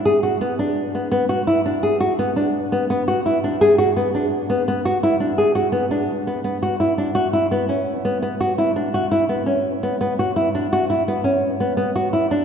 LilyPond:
\new Staff \with { instrumentName = "Nylon-string guitar" } { \time 5/4 \key b \dorian \tempo 4 = 169 gis'8 fis'8 b8 d'4 b8 b8 fis'8 e'8 d'8 | gis'8 fis'8 b8 d'4 b8 b8 fis'8 e'8 d'8 | gis'8 fis'8 b8 d'4 b8 b8 fis'8 e'8 d'8 | gis'8 fis'8 b8 d'4 b8 b8 fis'8 e'8 d'8 |
fis'8 e'8 b8 cis'4 b8 b8 fis'8 e'8 d'8 | fis'8 e'8 b8 cis'4 b8 b8 fis'8 e'8 d'8 | fis'8 e'8 b8 cis'4 b8 b8 fis'8 e'8 d'8 | }